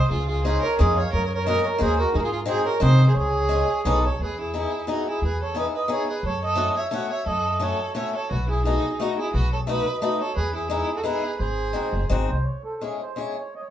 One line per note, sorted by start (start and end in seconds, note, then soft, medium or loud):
0.11 0.56 C#2 medium
0.11 0.27 F4 medium
0.11 0.29 F4 medium
0.11 0.27 G#4 medium
0.28 0.44 F4 medium
0.28 0.46 F4 soft
0.28 0.44 G#4 medium
0.44 0.64 G#3 medium
0.44 0.64 C#4 soft
0.44 0.64 D#4 medium
0.44 0.64 F4 medium
0.44 0.61 G#4 medium
0.44 0.63 G#4 medium
0.44 0.64 C5 medium
0.62 0.78 A#4 medium
0.62 0.79 A#4 medium
0.62 0.80 C#5 medium
0.79 1.02 F2 loud
0.79 0.98 G#3 medium
0.79 0.98 C#4 medium
0.79 0.98 D#4 soft
0.79 0.99 F4 medium
0.79 0.96 G#4 medium
0.79 0.98 G#4 medium
0.79 0.98 D#5 medium
0.96 1.12 C#5 medium
0.96 1.10 C#5 medium
0.96 1.12 F5 medium
1.12 1.57 F#2 medium
1.12 1.24 A#4 medium
1.12 1.25 A#4 medium
1.12 1.24 C#5 medium
1.25 1.34 A#4 medium
1.25 1.33 C#5 medium
1.34 1.46 A#4 medium
1.34 1.47 C#5 medium
1.46 1.65 G#3 medium
1.46 1.66 A#3 medium
1.46 1.66 C#4 medium
1.46 1.66 F#4 medium
1.46 1.63 A#4 medium
1.46 1.64 A#4 medium
1.46 1.66 D#5 medium
1.64 1.79 A#4 medium
1.64 1.81 A#4 medium
1.64 1.81 C#5 medium
1.78 2.03 D#2 medium
1.78 1.98 G#3 medium
1.78 1.98 A#3 medium
1.78 1.98 C#4 medium
1.78 1.99 F#4 medium
1.78 1.98 G#4 medium
1.78 1.99 C5 medium
1.98 2.13 F#4 medium
1.98 2.14 F#4 medium
1.98 2.15 A#4 medium
2.14 2.58 G#2 medium
2.14 2.18 D#4 medium
2.14 2.19 D#4 medium
2.14 2.19 G#4 medium
2.19 2.23 F#4 medium
2.19 2.23 A#4 medium
2.23 2.32 F4 medium
2.23 2.31 G#4 medium
2.33 2.40 F4 medium
2.33 2.41 F4 medium
2.33 2.40 G#4 medium
2.46 2.65 G#3 medium
2.46 2.65 C4 medium
2.46 2.65 D#4 soft
2.46 2.66 F#4 medium
2.46 2.65 G#4 medium
2.46 2.66 C5 medium
2.65 2.81 A#4 medium
2.65 2.82 C#5 medium
2.80 3.04 C3 loud
2.80 2.99 G#3 medium
2.80 2.99 C4 medium
2.80 2.99 D#4 medium
2.80 3.00 F#4 medium
2.80 3.06 C5 medium
2.80 3.05 C5 medium
2.80 3.08 D#5 loud
3.07 3.14 G#4 medium
3.07 3.15 G#4 medium
3.07 3.16 C5 medium
3.14 3.61 C#2 medium
3.14 3.81 G#4 medium
3.14 3.99 G#4 medium
3.14 3.98 C#5 medium
3.49 3.68 G#3 medium
3.49 3.68 C#4 medium
3.49 3.69 F4 medium
3.49 3.69 G#4 medium
3.85 4.08 B1 medium
3.85 4.04 B3 medium
3.85 4.04 D#4 medium
3.85 4.04 F#4 medium
3.85 4.05 A4 medium
3.85 4.03 B4 medium
3.85 4.05 D#5 medium
4.06 4.20 A4 medium
4.06 4.21 C#5 medium
4.20 4.64 E2 medium
4.20 4.38 G#4 medium
4.20 4.38 B4 medium
4.40 4.54 E4 medium
4.40 4.55 G#4 medium
4.54 4.72 B3 medium
4.54 4.72 D#4 soft
4.54 4.72 E4 soft
4.54 4.87 E4 medium
4.54 4.73 G#4 medium
4.54 4.91 G#4 medium
4.87 5.06 B3 medium
4.87 5.06 D#4 medium
4.87 5.06 E4 soft
4.87 5.07 F#4 medium
4.87 5.07 G#4 medium
5.09 5.23 E4 medium
5.09 5.24 G#4 medium
5.22 5.66 E2 medium
5.22 5.40 G#4 medium
5.22 5.42 B4 medium
5.42 5.56 A4 medium
5.42 5.57 C#5 medium
5.55 5.73 B3 medium
5.55 5.73 D#4 soft
5.55 5.74 E4 medium
5.55 5.74 G#4 medium
5.55 5.66 B4 medium
5.55 5.64 D#5 medium
5.76 5.90 B4 medium
5.76 5.90 D#5 medium
5.88 6.07 B3 medium
5.88 6.07 D#4 medium
5.88 6.07 E4 soft
5.88 6.07 G#4 medium
5.88 6.09 C#5 medium
6.10 6.23 G#4 medium
6.10 6.25 B4 medium
6.23 6.67 F#2 medium
6.23 6.42 A4 medium
6.23 6.43 C#5 loud
6.43 6.75 A4 loud
6.43 6.77 D#5 medium
6.55 6.74 A3 medium
6.55 6.75 C#4 medium
6.55 6.75 E4 soft
6.55 6.75 F#4 medium
6.77 6.91 C#5 medium
6.77 6.93 E5 medium
6.91 7.09 A3 medium
6.91 7.10 C#4 soft
6.91 7.10 E4 medium
6.91 7.11 F#4 medium
6.91 7.09 C#5 medium
6.91 7.12 F#5 medium
7.11 7.26 C#5 medium
7.11 7.28 E5 medium
7.26 7.71 F#2 medium
7.26 7.59 A4 medium
7.26 7.62 D#5 medium
7.60 7.79 A3 medium
7.60 7.79 C#4 medium
7.60 7.79 E4 medium
7.60 7.80 F#4 medium
7.60 7.94 A4 medium
7.60 7.94 C#5 medium
7.95 8.14 A3 medium
7.95 8.14 C#4 medium
7.95 8.14 E4 soft
7.95 8.14 F#4 medium
7.95 8.13 C#5 medium
7.95 8.15 E5 medium
8.16 8.30 A4 medium
8.16 8.32 C#5 medium
8.30 8.76 B1 medium
8.30 8.48 F#4 medium
8.30 8.49 B4 medium
8.49 8.65 E4 medium
8.49 8.63 G#4 medium
8.64 8.84 A3 medium
8.64 8.84 B3 soft
8.64 8.97 D#4 medium
8.64 8.84 D#4 soft
8.64 8.85 F#4 medium
8.64 9.00 G#4 medium
8.99 9.18 A3 medium
8.99 9.18 B3 medium
8.99 9.17 D#4 medium
8.99 9.19 D#4 medium
8.99 9.18 F#4 medium
8.99 9.19 F#4 medium
9.18 9.33 E4 medium
9.18 9.34 G#4 medium
9.33 9.78 B1 medium
9.33 9.50 F#4 medium
9.33 9.51 B4 medium
9.53 9.60 A4 medium
9.53 9.60 C#5 medium
9.67 9.86 A3 medium
9.67 9.86 B3 soft
9.67 9.86 D#4 medium
9.67 9.87 F#4 medium
9.67 10.00 B4 medium
9.67 10.00 D#5 medium
10.02 10.20 A3 medium
10.02 10.20 B3 soft
10.02 10.20 D#4 medium
10.02 10.21 F#4 medium
10.02 10.19 B4 medium
10.02 10.21 D#5 medium
10.20 10.36 A4 medium
10.20 10.37 C#5 medium
10.36 10.81 E2 medium
10.36 10.53 G#4 medium
10.36 10.55 B4 medium
10.54 10.69 E4 medium
10.54 10.68 G#4 medium
10.70 10.88 G#3 medium
10.70 10.89 B3 medium
10.70 10.89 D#4 medium
10.70 10.95 E4 medium
10.70 10.89 E4 medium
10.70 10.97 G#4 medium
10.95 11.05 F#4 medium
10.95 11.05 A4 medium
11.04 11.23 G#3 medium
11.04 11.23 B3 medium
11.04 11.23 D#4 medium
11.04 11.24 E4 medium
11.04 11.37 G#4 medium
11.04 11.41 B4 medium
11.38 11.74 G#1 medium
11.38 12.06 G#4 medium
11.38 12.05 C5 medium
11.73 11.92 G#3 medium
11.73 11.93 C4 medium
11.73 11.93 D#4 soft
11.73 11.94 F#4 medium
11.93 12.08 F#1 medium
12.10 12.27 G#1 medium
12.10 12.29 G#3 medium
12.10 12.29 C4 medium
12.10 12.29 D#4 medium
12.10 12.30 F#4 medium
12.29 12.44 C2 medium
12.29 12.45 C5 medium
12.44 12.63 C#5 medium
12.65 12.82 A4 medium
12.81 13.00 G#3 soft
12.81 13.01 C#4 soft
12.81 13.01 E4 soft
12.81 13.01 G#4 medium
12.81 13.01 G#4 soft
13.02 13.19 C5 medium
13.16 13.35 G#3 soft
13.16 13.36 C#4 soft
13.16 13.36 E4 soft
13.16 13.37 G#4 medium
13.16 13.37 C#5 medium
13.38 13.54 C#5 medium
13.55 13.62 D#5 medium
13.60 13.68 C#5 medium